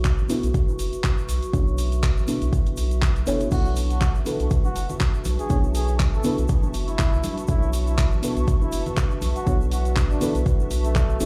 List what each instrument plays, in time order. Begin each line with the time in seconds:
Already playing: analog synth bass B1, synth stab B3 D4 E4 A4 C#5, ambient pad F#4 B4 E5 C#6
0.05 kick, clap, closed hi-hat, shaker
0.18 analog synth bass A1, shaker
0.29 synth stab B3 D4 E4 A4 B4, open hi-hat, shaker
0.43 analog synth bass B1, closed hi-hat, shaker
0.54 kick, closed hi-hat, shaker
0.69 shaker
0.79 analog synth bass F#1, open hi-hat, shaker
0.93 closed hi-hat, shaker
1.04 kick, clap, closed hi-hat, shaker
1.18 shaker
1.29 analog synth bass B1, open hi-hat, shaker
1.43 closed hi-hat, shaker
1.53 analog synth bass B1, synth stab B3 D4 E4 A4 C#5, kick, closed hi-hat, shaker
1.67 shaker
1.78 open hi-hat, shaker
1.92 closed hi-hat, shaker
2.03 kick, clap, closed hi-hat, shaker
2.17 analog synth bass A1, shaker
2.27 synth stab B3 D4 E4 A4 B4, open hi-hat, shaker
2.42 analog synth bass B1, closed hi-hat, shaker
2.53 kick, closed hi-hat, shaker
2.66 closed hi-hat, shaker
2.77 analog synth bass B1, open hi-hat, shaker
2.91 closed hi-hat, shaker
3.02 kick, clap, closed hi-hat, shaker
3.16 closed hi-hat, shaker
3.26 analog synth bass F#1, synth stab B3 D4 E4 A4 C#5, open hi-hat, shaker
3.40 closed hi-hat, shaker
3.51 analog synth bass B1, synth stab B3 D4 E4 A4 C#5, analog synth pad D4 E5 A5 C#6, muted trumpet F#4, kick, closed hi-hat, crash, shaker
3.65 shaker
3.76 open hi-hat, shaker
3.90 muted trumpet F#4, closed hi-hat, shaker
4.01 ambient pad A5, kick, clap, closed hi-hat, high conga, shaker
4.15 analog synth bass A1, shaker
4.25 synth stab B3 D4 E4 A4 B4, open hi-hat, shaker
4.40 analog synth bass B1, closed hi-hat, shaker
4.51 kick, closed hi-hat, shaker
4.64 muted trumpet F#4, high conga, shaker
4.76 analog synth bass F#1, open hi-hat, shaker
4.89 closed hi-hat, low conga, shaker
5.00 kick, clap, closed hi-hat, shaker
5.14 shaker
5.25 analog synth bass B1, open hi-hat, high conga, shaker
5.39 muted trumpet G#4, closed hi-hat, shaker
5.49 analog synth bass B1, synth stab B3 D4 E4 A4 C#5, kick, closed hi-hat, shaker
5.63 shaker
5.75 muted trumpet G#4, open hi-hat, shaker
5.88 closed hi-hat, shaker
5.99 kick, clap, closed hi-hat, high conga, shaker
6.14 analog synth bass A1, muted trumpet A4, shaker
6.23 synth stab B3 D4 E4 A4 B4, open hi-hat, low conga, shaker
6.38 analog synth bass B1, closed hi-hat, shaker
6.48 kick, closed hi-hat, shaker
6.63 high conga, shaker
6.74 analog synth bass F#1, open hi-hat, shaker
6.88 muted trumpet E4, closed hi-hat, shaker
6.98 kick, clap, closed hi-hat, low conga, shaker
7.13 analog synth bass B1, shaker
7.24 open hi-hat, high conga, shaker
7.38 closed hi-hat, shaker
7.47 analog synth bass B1, synth stab B3 D4 E4 A4 C#5, muted trumpet E4, kick, closed hi-hat, shaker
7.62 shaker
7.73 open hi-hat, shaker
7.87 muted trumpet E4, closed hi-hat, shaker
7.98 kick, clap, closed hi-hat, high conga, shaker
8.12 analog synth bass A1, shaker
8.22 synth stab B3 D4 E4 A4 B4, open hi-hat, shaker
8.36 analog synth bass B1, closed hi-hat, shaker
8.48 kick, closed hi-hat, shaker
8.61 muted trumpet E4, high conga, shaker
8.72 analog synth bass F#1, open hi-hat, shaker
8.86 closed hi-hat, low conga, shaker
8.97 kick, clap, closed hi-hat, shaker
9.11 shaker
9.22 analog synth bass B1, open hi-hat, high conga, shaker
9.36 muted trumpet F#4, closed hi-hat, shaker
9.46 analog synth bass B1, synth stab B3 D4 E4 A4 C#5, kick, closed hi-hat, shaker
9.61 shaker
9.71 muted trumpet F#4, open hi-hat, shaker
9.85 closed hi-hat, shaker
9.96 kick, clap, closed hi-hat, high conga, shaker
10.10 analog synth bass A1, muted trumpet D4, shaker
10.20 synth stab B3 D4 E4 A4 B4, open hi-hat, low conga, shaker
10.35 analog synth bass B1, closed hi-hat, shaker
10.46 kick, closed hi-hat, shaker
10.59 high conga, shaker
10.71 analog synth bass B1, open hi-hat, shaker
10.84 muted trumpet A3, closed hi-hat, shaker
10.95 kick, clap, closed hi-hat, low conga, shaker
11.10 shaker
11.20 analog synth bass F#1, synth stab B3 D4 E4 A4 C#5, open hi-hat, high conga, shaker